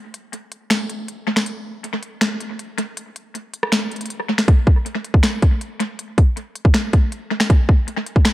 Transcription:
0.14 closed hi-hat
0.33 closed hi-hat
0.52 closed hi-hat
0.70 finger snap, snare, closed hi-hat
0.89 closed hi-hat
1.08 closed hi-hat
1.36 finger snap, snare
1.46 closed hi-hat
1.84 closed hi-hat
2.03 closed hi-hat
2.21 finger snap, snare, closed hi-hat
2.40 closed hi-hat
2.59 closed hi-hat
2.78 closed hi-hat
2.97 closed hi-hat
3.16 closed hi-hat
3.35 closed hi-hat
3.54 closed hi-hat
3.63 cross-stick
3.72 finger snap, snare, closed hi-hat
3.91 closed hi-hat
3.96 closed hi-hat
4.01 closed hi-hat
4.06 closed hi-hat
4.10 closed hi-hat
4.38 finger snap, snare
4.48 kick, closed hi-hat
4.67 kick
4.86 closed hi-hat
5.05 closed hi-hat
5.14 kick
5.23 finger snap, snare, closed hi-hat
5.42 kick, closed hi-hat
5.61 closed hi-hat
5.80 closed hi-hat
5.99 closed hi-hat
6.18 kick, closed hi-hat
6.37 closed hi-hat
6.55 closed hi-hat
6.65 kick
6.74 finger snap, snare, closed hi-hat
6.93 kick, closed hi-hat
7.12 closed hi-hat
7.40 finger snap, snare
7.50 kick, closed hi-hat
7.69 kick
7.88 closed hi-hat
8.06 closed hi-hat
8.16 kick
8.25 finger snap, snare, closed hi-hat

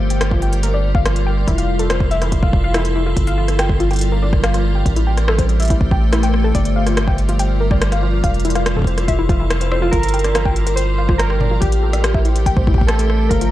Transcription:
Already playing: G1 G3 F4 A#4
0.10 G5, closed hi-hat
0.21 cross-stick, closed hi-hat
0.31 F4, kick
0.42 G5, closed hi-hat
0.53 closed hi-hat
0.63 A#4, closed hi-hat
0.74 D5
0.95 F5, kick
1.05 F4, cross-stick, closed hi-hat
1.16 closed hi-hat
1.27 G5
1.48 F1 E4 A4, kick, closed hi-hat
1.58 F5, closed hi-hat
1.79 A4, closed hi-hat
1.90 C5, cross-stick, closed hi-hat
2.00 kick
2.11 E5, closed hi-hat
2.22 E4, cross-stick, closed hi-hat
2.32 kick, closed hi-hat
2.43 F5, kick
2.53 kick
2.64 F5
2.74 E4, cross-stick, closed hi-hat
2.85 closed hi-hat
2.96 E4
3.06 F4
3.17 G1 G3 A#4, kick, closed hi-hat
3.27 F5, closed hi-hat
3.38 F4
3.48 cross-stick, closed hi-hat
3.59 G5, cross-stick, closed hi-hat
3.69 kick
3.80 F4, closed hi-hat
3.91 G5, closed hi-hat
3.93 closed hi-hat
3.96 closed hi-hat
3.99 closed hi-hat
4.01 closed hi-hat
4.12 A#4
4.22 D5
4.33 kick, cross-stick
4.44 F5, cross-stick, closed hi-hat
4.54 F4, cross-stick, closed hi-hat
4.75 G5
4.85 A1 A3 G4 C5, kick, closed hi-hat
4.96 E4, closed hi-hat
5.07 G5
5.17 cross-stick, closed hi-hat
5.28 A4, cross-stick
5.38 C5, kick, closed hi-hat
5.49 closed hi-hat
5.60 E5, closed hi-hat
5.62 closed hi-hat
5.65 closed hi-hat
5.68 E4, kick, closed hi-hat
5.70 closed hi-hat
5.81 kick
5.91 G5, kick
6.13 E4, cross-stick, closed hi-hat
6.23 G5, closed hi-hat
6.34 cross-stick
6.44 A4
6.55 G1 G3 F4 A#4 D5, kick, closed hi-hat
6.65 closed hi-hat
6.76 F5
6.87 F4, cross-stick, closed hi-hat
6.97 cross-stick, closed hi-hat
7.08 G5, kick
7.18 closed hi-hat
7.29 F4, closed hi-hat
7.39 G5, closed hi-hat
7.60 A#4
7.71 D5, kick, cross-stick
7.82 cross-stick, closed hi-hat
7.92 F5, cross-stick, closed hi-hat
8.03 F4
8.24 F1 E4 A4 F5, kick, closed hi-hat
8.34 closed hi-hat
8.40 closed hi-hat
8.45 E4, closed hi-hat
8.50 closed hi-hat
8.55 F5, cross-stick, closed hi-hat
8.66 cross-stick, closed hi-hat
8.76 A4, kick
8.79 kick
8.82 kick
8.84 C5, kick, closed hi-hat
8.98 cross-stick, closed hi-hat
9.08 E5, kick, closed hi-hat
9.19 E4
9.29 F4, kick, closed hi-hat
9.40 E4
9.50 cross-stick, closed hi-hat
9.61 C5, closed hi-hat
9.72 C5, cross-stick
9.82 F4
9.91 G1 G3 F4 A#4, kick, closed hi-hat
10.03 closed hi-hat
10.09 closed hi-hat
10.14 G5, closed hi-hat
10.19 closed hi-hat
10.24 D5, cross-stick, closed hi-hat
10.35 F4, cross-stick, closed hi-hat
10.45 G5, kick
10.56 closed hi-hat
10.67 A#4, closed hi-hat
10.76 C5, closed hi-hat
10.98 F5
11.09 F4, kick, cross-stick
11.18 A#4, cross-stick, closed hi-hat
11.30 G5, cross-stick
11.41 D5, mid tom
11.51 F4
11.60 A1 A3 G4 C5 G5, kick, closed hi-hat
11.72 closed hi-hat
11.83 A4
11.93 cross-stick, closed hi-hat
12.04 cross-stick, closed hi-hat
12.14 E5, kick
12.25 E4, closed hi-hat
12.36 closed hi-hat
12.46 G5, kick, closed hi-hat
12.57 C5, kick, mid tom
12.67 E4, kick
12.74 G5, kick
12.81 kick
12.87 A4, cross-stick, closed hi-hat
12.99 A4, closed hi-hat
13.10 cross-stick
13.29 G1 G3 F4 A#4 F5, kick, closed hi-hat
13.41 F4, closed hi-hat

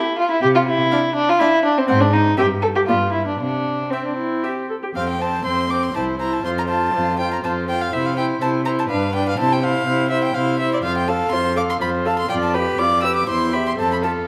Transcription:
Already playing: E4
0.18 F4
0.31 E4
0.42 C3 G4
0.55 F4
0.67 E4
0.92 D4 F5
1.15 D4
1.29 F4
1.39 D4 E4 F5
1.65 D4
1.78 C4
1.88 G#2 C4 F#5
2.01 D4
2.13 D#4
2.38 G2 C4 G4 E5
2.62 A4
2.75 G4
2.87 G2 B3 F4 D5
3.13 E4
3.27 D4
3.40 C3 D4
3.91 C4 E5
4.05 D4
4.17 E4
4.43 G4 E5
4.69 A4
4.83 G4
4.95 F2 C4 C5 F5
5.10 G5
5.20 C4 C5 A5
5.45 F2 C4 C5 C6
5.70 C4 C5 D6
5.84 C6
5.95 C2 E4 C5 A5
6.19 E4 C5 A#5
6.33 A5
6.44 F2 F4 C5 C6
6.59 A#5
6.68 F4 C5 A5
6.93 F2 F4 C5
7.19 F4 C5 G5
7.33 A#5
7.44 F2 F4 C5 A5
7.68 F4 C5 G5
7.82 F5
7.93 C3 E4 C5 E5
8.06 F5
8.16 E4 C5 G5
8.42 C3 E4 C5 A5
8.65 E4 C5 A#5
8.79 A5
8.89 G2 D4 B4 F5
9.13 D4 B4 G5
9.29 F5
9.39 C3 E4 C5 A5
9.53 G5
9.62 E4 C5 F5
9.86 C3 E4 C5
10.10 E4 C5 E5
10.24 G5
10.35 C3 E4 C5 F5
10.59 E4 C5 E5
10.74 D5
10.84 F2 F4 C5 F5
10.98 G5
11.08 A4 F5 A5
11.32 F2 F4 C5 C6
11.56 A4 F5 D6
11.70 C6
11.81 F2 F4 C5 B5
12.05 A4 F5 A5
12.19 C6
12.30 F2 F4 D5 G5
12.43 A5
12.54 G4 B4 B5
12.78 F2 F4 D5 D6
13.03 G4 B4 E6
13.16 D6
13.27 E2 E4 C5 C6
13.52 G4 E5 B5
13.68 C6
13.78 F2 A4 C5 A5
13.93 B5
14.02 F4 A4 A5

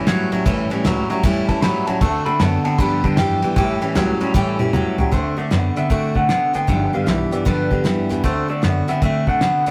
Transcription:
0.07 G2 A2 E3 F#3 G3 C#4 E4, snare, ride
0.32 E2 A2 F#3 G3 C#4 E4, ride
0.45 A1 A2 E3 G3 C#4 E4, kick, ride
0.70 A2 E3 G3 C#4 E4, muted upright bass stroke, ride
0.84 C#2 A2 E3 F#3 G3 C#4 E4, snare, ride
1.10 A2 F#3 G3 C#4 E4, ride
1.23 E2 A2 E3 G3 C#4 E4, kick, ride
1.49 F#2 A2 E3 G3 C#4 E4 A5, kick, ride
1.61 G2 A2 E3 F#3 G3 C#4 E4 B5, snare, ride
1.86 E2 A2 F#3 G3 C#4 E4 A5, ride
2.01 D2 D3 A3 C4 F#4 A5, kick, ride
2.25 D3 A3 C4 F#4 B5, muted upright bass stroke, ride
2.39 F#2 D3 A3 B3 C4 F#4 A5, snare, ride
2.64 D3 A3 B3 C4 F#4 A5, muted upright bass stroke, ride
2.78 G2 D3 F3 G3 B3 G4 B5, kick, ride
3.04 E2 G2 D3 F3 G3 B3 G4 A5, kick, ride
3.16 F2 G2 E3 F3 G3 B3 G4 G5, snare, ride
3.42 G1 G2 E3 F3 G3 B3 G4, ride
3.56 A1 A2 E3 G3 C#4 G4, kick, ride
3.81 A2 E3 G3 C#4 G4, muted upright bass stroke, ride
3.95 C#2 A2 E3 F#3 G3 C#4 G4, snare, ride
4.20 A2 F#3 G3 C#4 G4, muted upright bass stroke, ride
4.34 A2 E3 G3 C#4 G4, kick, snare
4.59 F#2 A2 E3 G3 C#4 G4, high tom
4.73 G2 A2 E3 F#3 G3 C#4 G4, mid tom
4.98 C#2 A2 F#3 G3 C#4 G4, floor tom
5.11 D2 D3 A3 C4 F#4 C5, kick, closed hi-hat
5.37 D3 A3 C4 F#4 D5, muted upright bass stroke
5.50 F#2 D3 A3 B3 C4 F#4, snare, closed hi-hat
5.76 D3 A3 B3 C4 F#4 E5, muted upright bass stroke, closed hi-hat
5.90 A2 D3 A3 C4 F#4 E5, kick, closed hi-hat
6.14 B2 D3 A3 C4 F#4 F#5, kick
6.29 D3 A3 B3 C4 F#4, snare, closed hi-hat
6.53 A2 D3 A3 B3 C4 F#4 G5, closed hi-hat
6.67 G1 G2 D3 F3 G3 B3 G4, kick, closed hi-hat
6.93 G2 D3 F3 G3 B3 G4 F5
7.04 B1 G2 E3 F3 G3 B3 E5 F5, snare, closed hi-hat
7.09 G4
7.31 G2 E3 F3 G3 B3 G4 D5, muted upright bass stroke, closed hi-hat
7.45 D2 G2 D3 F3 G3 B3 G4 B4, kick, closed hi-hat
7.70 G2 D3 F3 G3 B3 G4, kick
7.84 F2 G2 E3 F3 G3 B3 G4, snare, closed hi-hat
8.09 E2 G2 E3 F3 G3 B3 G4, closed hi-hat
8.24 D2 D3 A3 C4 F#4 C5, kick, closed hi-hat
8.48 D3 A3 C4 F#4 D5, muted upright bass stroke
8.62 F#2 D3 A3 B3 C4 F#4, snare, closed hi-hat
8.88 D3 A3 B3 C4 F#4 E5, muted upright bass stroke, closed hi-hat
9.02 A2 D3 A3 C4 F#4 E5, kick, closed hi-hat
9.27 B2 D3 A3 C4 F#4 F#5, kick
9.41 C3 D3 A3 B3 C4 F#4, snare, closed hi-hat
9.66 A2 D3 B3 C4 F#4 D5, closed hi-hat

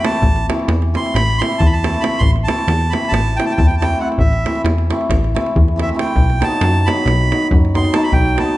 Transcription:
0.03 E3 A3 C4 E4 A5, davul high
0.15 davul high
0.22 A1, davul low
0.36 davul high
0.49 E3 A3 C4 E4, davul high
0.59 davul high
0.68 E2, davul high
0.82 davul high
0.94 E3 A3 C4 E4 C6, davul high
1.06 davul high
1.14 A1 B5, davul high
1.38 E3 A3 C4 C6, davul high
1.43 E4
1.52 davul high
1.58 E2 A5, davul low
1.66 B5
1.73 A5, davul high
1.84 E3 A3 C4 E4, davul high
1.95 davul high
2.01 E3 A3 C4 E4 B5, davul high
2.14 davul high
2.19 A1 C6, davul low
2.36 davul high
2.44 E3 A5
2.48 A3 C4 E4, davul high
2.58 davul high
2.67 E2, davul high
2.81 davul high
2.90 E3 A3 C4 B5, davul high
2.94 E4
3.05 A5, davul high
3.12 A1, davul high
3.36 E3 A3 C4 E4 G5, davul high
3.46 A5
3.50 G5, davul high
3.57 E2 A5, davul low
3.67 G5
3.71 davul high
3.76 A5
3.81 E3 A3 C4 E4 G5, davul high
3.93 davul high
3.99 E3 A3 C4 E4 F#5
4.12 davul high
4.18 A1 E5, davul low
4.33 davul high
4.45 E3 A3 C4 E4, davul high
4.55 davul high
4.64 E2, davul high
4.78 davul high
4.90 E3 A3 C4 E4, davul high
5.01 davul high
5.09 A1, davul high, davul low
5.24 davul high
5.34 E3 A3 C4 E4, davul high
5.46 davul high
5.56 E2, davul low
5.68 davul high
5.76 E3 A3 C4 E4, davul high
5.82 E5
5.89 davul high
5.94 E3 A3 C4 E4
5.99 G5, davul high
6.08 davul high
6.16 B1, davul low
6.30 davul high
6.40 D#3 F#3 B3 D#4 A5, davul high
6.52 davul high
6.61 F#2, davul high
6.74 davul high
6.86 D#3 F#3 B3 D#4 B5, davul high
6.97 davul high
7.05 B1, davul high
7.32 D#3 F#3 B3 D#4, davul high
7.42 davul high
7.51 F#2, davul low
7.65 davul high
7.74 D#3 F#3 B3 D#4 C6, davul high
7.84 davul high
7.93 D#3 F#3 B3 D#4 A5, davul high
8.03 B5, davul high
8.12 B1 G5, davul low
8.25 davul high
8.38 D#3 F#3 B3 D#4 A5, davul high
8.49 davul high

